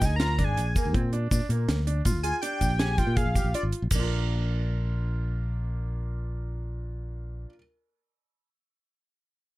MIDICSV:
0, 0, Header, 1, 5, 480
1, 0, Start_track
1, 0, Tempo, 371747
1, 1695, Time_signature, 7, 2, 24, 8
1, 12367, End_track
2, 0, Start_track
2, 0, Title_t, "Analog synth lead"
2, 0, Program_c, 0, 81
2, 65, Note_on_c, 0, 80, 88
2, 201, Note_off_c, 0, 80, 0
2, 209, Note_on_c, 0, 82, 98
2, 568, Note_on_c, 0, 80, 92
2, 588, Note_off_c, 0, 82, 0
2, 1292, Note_off_c, 0, 80, 0
2, 2883, Note_on_c, 0, 80, 104
2, 3112, Note_off_c, 0, 80, 0
2, 3119, Note_on_c, 0, 79, 104
2, 3598, Note_on_c, 0, 80, 109
2, 3618, Note_off_c, 0, 79, 0
2, 3842, Note_on_c, 0, 79, 101
2, 3861, Note_off_c, 0, 80, 0
2, 4080, Note_on_c, 0, 77, 98
2, 4099, Note_off_c, 0, 79, 0
2, 4567, Note_off_c, 0, 77, 0
2, 4582, Note_on_c, 0, 74, 75
2, 4688, Note_off_c, 0, 74, 0
2, 12367, End_track
3, 0, Start_track
3, 0, Title_t, "Grand piano"
3, 0, Program_c, 1, 0
3, 20, Note_on_c, 1, 63, 75
3, 185, Note_off_c, 1, 63, 0
3, 255, Note_on_c, 1, 65, 76
3, 422, Note_off_c, 1, 65, 0
3, 496, Note_on_c, 1, 62, 74
3, 830, Note_off_c, 1, 62, 0
3, 980, Note_on_c, 1, 58, 87
3, 1145, Note_off_c, 1, 58, 0
3, 1225, Note_on_c, 1, 60, 79
3, 1388, Note_off_c, 1, 60, 0
3, 1456, Note_on_c, 1, 62, 74
3, 1623, Note_off_c, 1, 62, 0
3, 1699, Note_on_c, 1, 62, 87
3, 1865, Note_off_c, 1, 62, 0
3, 1935, Note_on_c, 1, 58, 73
3, 2269, Note_off_c, 1, 58, 0
3, 2415, Note_on_c, 1, 62, 71
3, 2582, Note_off_c, 1, 62, 0
3, 2653, Note_on_c, 1, 65, 76
3, 2821, Note_off_c, 1, 65, 0
3, 2893, Note_on_c, 1, 65, 81
3, 3061, Note_off_c, 1, 65, 0
3, 3133, Note_on_c, 1, 62, 77
3, 3468, Note_off_c, 1, 62, 0
3, 3603, Note_on_c, 1, 67, 78
3, 3774, Note_off_c, 1, 67, 0
3, 3853, Note_on_c, 1, 65, 74
3, 4021, Note_off_c, 1, 65, 0
3, 4093, Note_on_c, 1, 68, 83
3, 4261, Note_off_c, 1, 68, 0
3, 4331, Note_on_c, 1, 67, 80
3, 4500, Note_off_c, 1, 67, 0
3, 4573, Note_on_c, 1, 65, 77
3, 4908, Note_off_c, 1, 65, 0
3, 5055, Note_on_c, 1, 58, 64
3, 5101, Note_on_c, 1, 62, 64
3, 5156, Note_on_c, 1, 65, 62
3, 5206, Note_on_c, 1, 70, 67
3, 9624, Note_off_c, 1, 58, 0
3, 9671, Note_off_c, 1, 62, 0
3, 9726, Note_off_c, 1, 65, 0
3, 9776, Note_off_c, 1, 70, 0
3, 12367, End_track
4, 0, Start_track
4, 0, Title_t, "Fretless electric bass"
4, 0, Program_c, 2, 35
4, 18, Note_on_c, 2, 38, 81
4, 497, Note_on_c, 2, 32, 96
4, 516, Note_off_c, 2, 38, 0
4, 704, Note_off_c, 2, 32, 0
4, 744, Note_on_c, 2, 34, 88
4, 948, Note_off_c, 2, 34, 0
4, 1103, Note_on_c, 2, 38, 79
4, 1219, Note_off_c, 2, 38, 0
4, 1219, Note_on_c, 2, 46, 79
4, 1634, Note_off_c, 2, 46, 0
4, 1696, Note_on_c, 2, 46, 84
4, 1800, Note_off_c, 2, 46, 0
4, 1926, Note_on_c, 2, 46, 86
4, 2138, Note_off_c, 2, 46, 0
4, 2172, Note_on_c, 2, 38, 93
4, 2590, Note_off_c, 2, 38, 0
4, 2651, Note_on_c, 2, 46, 89
4, 2776, Note_off_c, 2, 46, 0
4, 2776, Note_on_c, 2, 38, 87
4, 2984, Note_off_c, 2, 38, 0
4, 3371, Note_on_c, 2, 34, 85
4, 3894, Note_off_c, 2, 34, 0
4, 3961, Note_on_c, 2, 46, 87
4, 4175, Note_off_c, 2, 46, 0
4, 4205, Note_on_c, 2, 34, 84
4, 4418, Note_off_c, 2, 34, 0
4, 4445, Note_on_c, 2, 34, 85
4, 4554, Note_off_c, 2, 34, 0
4, 4688, Note_on_c, 2, 32, 86
4, 4795, Note_off_c, 2, 32, 0
4, 4936, Note_on_c, 2, 34, 86
4, 5040, Note_off_c, 2, 34, 0
4, 5048, Note_on_c, 2, 34, 84
4, 9617, Note_off_c, 2, 34, 0
4, 12367, End_track
5, 0, Start_track
5, 0, Title_t, "Drums"
5, 18, Note_on_c, 9, 82, 49
5, 21, Note_on_c, 9, 36, 72
5, 21, Note_on_c, 9, 38, 33
5, 21, Note_on_c, 9, 42, 62
5, 147, Note_off_c, 9, 82, 0
5, 150, Note_off_c, 9, 36, 0
5, 150, Note_off_c, 9, 38, 0
5, 150, Note_off_c, 9, 42, 0
5, 254, Note_on_c, 9, 38, 107
5, 254, Note_on_c, 9, 42, 86
5, 256, Note_on_c, 9, 82, 20
5, 383, Note_off_c, 9, 38, 0
5, 383, Note_off_c, 9, 42, 0
5, 385, Note_off_c, 9, 82, 0
5, 498, Note_on_c, 9, 38, 31
5, 498, Note_on_c, 9, 42, 61
5, 500, Note_on_c, 9, 36, 73
5, 627, Note_off_c, 9, 38, 0
5, 627, Note_off_c, 9, 42, 0
5, 629, Note_off_c, 9, 36, 0
5, 741, Note_on_c, 9, 42, 79
5, 749, Note_on_c, 9, 82, 20
5, 870, Note_off_c, 9, 42, 0
5, 878, Note_off_c, 9, 82, 0
5, 980, Note_on_c, 9, 36, 84
5, 980, Note_on_c, 9, 82, 50
5, 982, Note_on_c, 9, 42, 59
5, 1109, Note_off_c, 9, 36, 0
5, 1109, Note_off_c, 9, 82, 0
5, 1111, Note_off_c, 9, 42, 0
5, 1220, Note_on_c, 9, 36, 115
5, 1222, Note_on_c, 9, 42, 77
5, 1349, Note_off_c, 9, 36, 0
5, 1351, Note_off_c, 9, 42, 0
5, 1455, Note_on_c, 9, 42, 57
5, 1584, Note_off_c, 9, 42, 0
5, 1696, Note_on_c, 9, 36, 110
5, 1697, Note_on_c, 9, 42, 80
5, 1701, Note_on_c, 9, 82, 67
5, 1825, Note_off_c, 9, 36, 0
5, 1826, Note_off_c, 9, 42, 0
5, 1830, Note_off_c, 9, 82, 0
5, 1935, Note_on_c, 9, 42, 60
5, 2065, Note_off_c, 9, 42, 0
5, 2176, Note_on_c, 9, 38, 104
5, 2176, Note_on_c, 9, 42, 82
5, 2192, Note_on_c, 9, 82, 21
5, 2305, Note_off_c, 9, 38, 0
5, 2305, Note_off_c, 9, 42, 0
5, 2321, Note_off_c, 9, 82, 0
5, 2416, Note_on_c, 9, 42, 64
5, 2545, Note_off_c, 9, 42, 0
5, 2648, Note_on_c, 9, 42, 81
5, 2653, Note_on_c, 9, 36, 100
5, 2664, Note_on_c, 9, 82, 68
5, 2777, Note_off_c, 9, 42, 0
5, 2782, Note_off_c, 9, 36, 0
5, 2793, Note_off_c, 9, 82, 0
5, 2889, Note_on_c, 9, 42, 60
5, 3019, Note_off_c, 9, 42, 0
5, 3132, Note_on_c, 9, 42, 91
5, 3261, Note_off_c, 9, 42, 0
5, 3369, Note_on_c, 9, 42, 59
5, 3372, Note_on_c, 9, 36, 69
5, 3378, Note_on_c, 9, 82, 50
5, 3498, Note_off_c, 9, 42, 0
5, 3501, Note_off_c, 9, 36, 0
5, 3507, Note_off_c, 9, 82, 0
5, 3608, Note_on_c, 9, 38, 112
5, 3608, Note_on_c, 9, 42, 89
5, 3737, Note_off_c, 9, 38, 0
5, 3737, Note_off_c, 9, 42, 0
5, 3847, Note_on_c, 9, 38, 32
5, 3847, Note_on_c, 9, 42, 64
5, 3850, Note_on_c, 9, 36, 73
5, 3853, Note_on_c, 9, 82, 22
5, 3976, Note_off_c, 9, 38, 0
5, 3976, Note_off_c, 9, 42, 0
5, 3979, Note_off_c, 9, 36, 0
5, 3983, Note_off_c, 9, 82, 0
5, 4088, Note_on_c, 9, 42, 90
5, 4091, Note_on_c, 9, 36, 106
5, 4103, Note_on_c, 9, 82, 20
5, 4217, Note_off_c, 9, 42, 0
5, 4220, Note_off_c, 9, 36, 0
5, 4232, Note_off_c, 9, 82, 0
5, 4332, Note_on_c, 9, 36, 80
5, 4334, Note_on_c, 9, 42, 60
5, 4334, Note_on_c, 9, 82, 49
5, 4461, Note_off_c, 9, 36, 0
5, 4463, Note_off_c, 9, 42, 0
5, 4463, Note_off_c, 9, 82, 0
5, 4574, Note_on_c, 9, 42, 85
5, 4703, Note_off_c, 9, 42, 0
5, 4809, Note_on_c, 9, 42, 58
5, 4938, Note_off_c, 9, 42, 0
5, 5043, Note_on_c, 9, 49, 90
5, 5050, Note_on_c, 9, 36, 97
5, 5053, Note_on_c, 9, 82, 81
5, 5172, Note_off_c, 9, 49, 0
5, 5179, Note_off_c, 9, 36, 0
5, 5182, Note_off_c, 9, 82, 0
5, 12367, End_track
0, 0, End_of_file